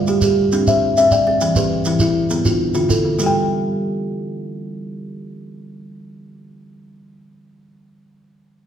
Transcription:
Already playing: kalimba B4 D5
0.07 kalimba G3 G4, shekere
0.21 kalimba G4, shekere
0.52 kalimba C4 D4, shekere
0.67 kalimba C5 E5, shekere
0.97 kalimba C4 E5, shekere
1.11 kalimba D5 G5, shekere
1.27 kalimba C4
1.41 kalimba E3 G5, shekere
1.56 kalimba E3 G4 B4, shekere
1.85 kalimba E3 E4, shekere
1.99 kalimba E4, shekere
2.30 kalimba D3 B3, shekere
2.45 kalimba D4 F4, shekere
2.74 kalimba D3 F4, shekere
2.89 kalimba E4 A4, shekere
3.05 kalimba D3
3.19 kalimba G3 A4, shekere
3.23 kalimba G4 G5
3.28 kalimba G5

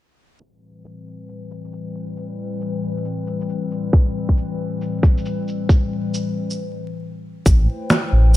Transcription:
0.40 ambient pad A2 E3 G3 C4 B4, shaker
0.85 shaker
1.29 shaker
1.51 shaker
1.65 shaker
1.73 shaker
1.95 shaker
2.17 shaker
2.61 shaker
2.97 shaker
3.05 shaker
3.27 shaker
3.41 shaker
3.49 shaker
3.71 shaker
3.93 kick, shaker
4.29 kick
4.37 shaker
4.81 shaker
5.03 kick, shaker
5.18 shaker
5.26 shaker
5.48 shaker
5.69 kick, shaker
6.14 shaker
6.50 shaker
7.46 detuned saw bass A1, ambient pad A3 E4 B4 C5 G5, kick, shaker
7.90 finger snap, low bongo, shaker
8.12 detuned saw bass A1

